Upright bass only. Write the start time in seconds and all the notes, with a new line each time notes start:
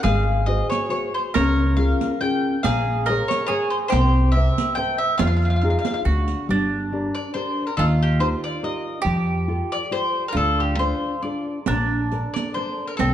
0.04 G#1
1.35 C#2
2.64 A#1
3.93 C2
5.20 F2
6.06 D2
6.49 G1
7.78 D#2
9.05 F2
10.34 D2
11.67 A#1
13.00 C2